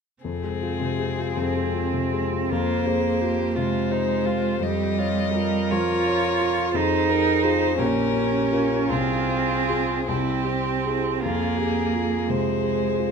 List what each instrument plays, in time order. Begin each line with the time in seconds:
0.23 grand piano F2, cello C3, viola C4, violin G#4
0.44 grand piano G#3
0.62 grand piano F4
0.80 grand piano C3
0.99 grand piano G#3
1.19 grand piano F4
1.34 grand piano F2, cello C4
1.55 grand piano G#3
1.74 grand piano F4
1.93 grand piano C3
2.13 grand piano G#3
2.33 grand piano F4
2.50 grand piano F2, cello A#3, viola F4, violin C5
2.86 viola G#4, grand piano C5
3.21 grand piano F4, viola G4
3.56 grand piano C3, cello G#3, viola F4, violin C5
3.91 viola D#4, grand piano C5
4.26 viola F4, grand piano F4
4.60 grand piano F2, cello G3, viola G4, violin D#5
4.98 viola F4, grand piano C#5
5.35 grand piano F4, viola A#4
5.71 grand piano F3, cello F4, violin C#5
6.07 grand piano C#5
6.40 grand piano F4
6.73 grand piano F2, cello D#4, viola G#4, violin C5
7.09 grand piano C4, violin A#4
7.43 grand piano F4 G#4, violin C5
7.78 grand piano A#1, cello C#4, viola G4, violin A#4
8.13 grand piano C#4
8.52 grand piano F4 A#4
8.89 grand piano C2, cello C4, viola F4, violin G#4
9.29 grand piano C4
9.69 grand piano F4 G#4
10.07 grand piano C2, cello C4, viola E4, violin G4
10.44 grand piano C4, viola G4
10.85 grand piano E4 G4, viola G#4
11.21 grand piano F2, cello A#3, viola F4, violin G#4
11.57 viola G4, grand piano G#4
11.93 grand piano F4, viola G#4
12.28 grand piano C3, cello G#3, violin C5
12.64 grand piano G#4
12.98 grand piano F4